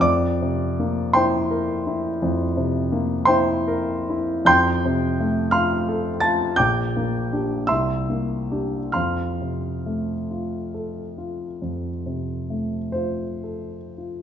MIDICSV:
0, 0, Header, 1, 2, 480
1, 0, Start_track
1, 0, Key_signature, -1, "major"
1, 0, Tempo, 761421
1, 23, Time_signature, 12, 3, 24, 8
1, 504, Tempo, 707547
1, 1944, Tempo, 749064
1, 2424, Tempo, 814111
1, 2904, Tempo, 700117
1, 4344, Tempo, 753769
1, 5304, Tempo, 882353
1, 7704, Tempo, 927357
1, 8184, Tempo, 1071429
1, 8537, End_track
2, 0, Start_track
2, 0, Title_t, "Grand piano"
2, 0, Program_c, 0, 0
2, 0, Control_c, 0, 64, 127
2, 0, Note_on_c, 0, 41, 68
2, 6, Note_on_c, 0, 86, 99
2, 13, Note_on_c, 0, 74, 73
2, 36, Control_c, 0, 64, 0
2, 146, Control_c, 0, 64, 127
2, 263, Note_on_c, 0, 48, 49
2, 502, Note_on_c, 0, 58, 50
2, 655, Note_off_c, 0, 48, 0
2, 720, Note_off_c, 0, 74, 0
2, 731, Note_on_c, 0, 84, 95
2, 739, Note_on_c, 0, 72, 73
2, 739, Note_on_c, 0, 79, 74
2, 743, Note_off_c, 0, 86, 0
2, 754, Note_on_c, 0, 64, 56
2, 896, Note_off_c, 0, 58, 0
2, 985, Note_on_c, 0, 70, 52
2, 1137, Note_off_c, 0, 64, 0
2, 1229, Note_on_c, 0, 64, 51
2, 1371, Note_off_c, 0, 70, 0
2, 1429, Note_off_c, 0, 41, 0
2, 1470, Note_on_c, 0, 41, 61
2, 1610, Note_off_c, 0, 64, 0
2, 1707, Note_on_c, 0, 48, 53
2, 1945, Note_on_c, 0, 58, 54
2, 2081, Note_off_c, 0, 48, 0
2, 2142, Note_off_c, 0, 72, 0
2, 2142, Note_off_c, 0, 79, 0
2, 2147, Note_off_c, 0, 84, 0
2, 2157, Note_on_c, 0, 84, 98
2, 2166, Note_on_c, 0, 72, 80
2, 2167, Note_on_c, 0, 79, 74
2, 2179, Note_on_c, 0, 64, 62
2, 2321, Note_off_c, 0, 58, 0
2, 2428, Note_on_c, 0, 70, 59
2, 2573, Note_off_c, 0, 64, 0
2, 2675, Note_on_c, 0, 64, 56
2, 2816, Note_off_c, 0, 70, 0
2, 2875, Note_off_c, 0, 41, 0
2, 2877, Note_off_c, 0, 72, 0
2, 2877, Note_off_c, 0, 79, 0
2, 2884, Note_on_c, 0, 41, 66
2, 2887, Note_off_c, 0, 84, 0
2, 2891, Note_on_c, 0, 91, 115
2, 2895, Note_on_c, 0, 84, 97
2, 2897, Note_on_c, 0, 79, 95
2, 2907, Note_off_c, 0, 64, 0
2, 2918, Control_c, 0, 64, 0
2, 3015, Control_c, 0, 64, 127
2, 3158, Note_on_c, 0, 48, 53
2, 3397, Note_on_c, 0, 57, 51
2, 3537, Note_off_c, 0, 48, 0
2, 3595, Note_off_c, 0, 84, 0
2, 3596, Note_off_c, 0, 79, 0
2, 3609, Note_on_c, 0, 89, 90
2, 3615, Note_on_c, 0, 77, 63
2, 3616, Note_on_c, 0, 84, 69
2, 3620, Note_off_c, 0, 91, 0
2, 3631, Note_on_c, 0, 65, 54
2, 3769, Note_off_c, 0, 57, 0
2, 3865, Note_on_c, 0, 69, 58
2, 4005, Note_off_c, 0, 65, 0
2, 4065, Note_off_c, 0, 77, 0
2, 4066, Note_off_c, 0, 84, 0
2, 4083, Note_on_c, 0, 93, 95
2, 4088, Note_on_c, 0, 81, 78
2, 4090, Note_off_c, 0, 89, 0
2, 4105, Note_on_c, 0, 65, 54
2, 4247, Note_off_c, 0, 69, 0
2, 4305, Note_off_c, 0, 41, 0
2, 4321, Note_off_c, 0, 81, 0
2, 4329, Note_on_c, 0, 91, 105
2, 4336, Note_off_c, 0, 93, 0
2, 4337, Note_on_c, 0, 86, 76
2, 4338, Note_on_c, 0, 79, 74
2, 4347, Note_off_c, 0, 65, 0
2, 4349, Note_on_c, 0, 34, 58
2, 4356, Control_c, 0, 64, 0
2, 4473, Control_c, 0, 64, 127
2, 4586, Note_on_c, 0, 58, 49
2, 4816, Note_on_c, 0, 62, 41
2, 4820, Note_on_c, 0, 67, 47
2, 4962, Note_off_c, 0, 58, 0
2, 5026, Note_off_c, 0, 79, 0
2, 5026, Note_off_c, 0, 86, 0
2, 5032, Note_off_c, 0, 62, 0
2, 5033, Note_off_c, 0, 67, 0
2, 5035, Note_on_c, 0, 88, 87
2, 5036, Note_off_c, 0, 34, 0
2, 5044, Note_on_c, 0, 76, 65
2, 5045, Note_on_c, 0, 84, 62
2, 5047, Note_off_c, 0, 91, 0
2, 5054, Note_on_c, 0, 36, 54
2, 5066, Control_c, 0, 64, 0
2, 5162, Control_c, 0, 64, 127
2, 5306, Note_on_c, 0, 58, 42
2, 5533, Note_on_c, 0, 67, 38
2, 5534, Note_on_c, 0, 62, 35
2, 5675, Note_off_c, 0, 58, 0
2, 5746, Note_off_c, 0, 76, 0
2, 5746, Note_off_c, 0, 84, 0
2, 5751, Note_off_c, 0, 36, 0
2, 5752, Note_off_c, 0, 62, 0
2, 5752, Note_off_c, 0, 67, 0
2, 5756, Note_on_c, 0, 89, 71
2, 5762, Note_on_c, 0, 77, 56
2, 5762, Note_on_c, 0, 84, 53
2, 5764, Note_off_c, 0, 88, 0
2, 5773, Note_on_c, 0, 41, 47
2, 5783, Control_c, 0, 64, 0
2, 5876, Control_c, 0, 64, 127
2, 6023, Note_on_c, 0, 48, 35
2, 6267, Note_on_c, 0, 57, 36
2, 6411, Note_off_c, 0, 48, 0
2, 6510, Note_on_c, 0, 65, 35
2, 6649, Note_off_c, 0, 57, 0
2, 6746, Note_on_c, 0, 69, 37
2, 6889, Note_off_c, 0, 65, 0
2, 6983, Note_on_c, 0, 65, 31
2, 7128, Note_off_c, 0, 69, 0
2, 7202, Note_off_c, 0, 41, 0
2, 7222, Note_on_c, 0, 41, 33
2, 7369, Note_off_c, 0, 65, 0
2, 7463, Note_on_c, 0, 48, 32
2, 7702, Note_on_c, 0, 57, 32
2, 7839, Note_off_c, 0, 48, 0
2, 7907, Note_off_c, 0, 77, 0
2, 7907, Note_off_c, 0, 84, 0
2, 7920, Note_on_c, 0, 72, 59
2, 7924, Note_off_c, 0, 89, 0
2, 7937, Note_on_c, 0, 65, 35
2, 8078, Note_off_c, 0, 57, 0
2, 8186, Note_on_c, 0, 69, 31
2, 8328, Note_off_c, 0, 65, 0
2, 8430, Note_on_c, 0, 65, 30
2, 8537, Note_off_c, 0, 41, 0
2, 8537, Note_off_c, 0, 65, 0
2, 8537, Note_off_c, 0, 69, 0
2, 8537, Note_off_c, 0, 72, 0
2, 8537, End_track
0, 0, End_of_file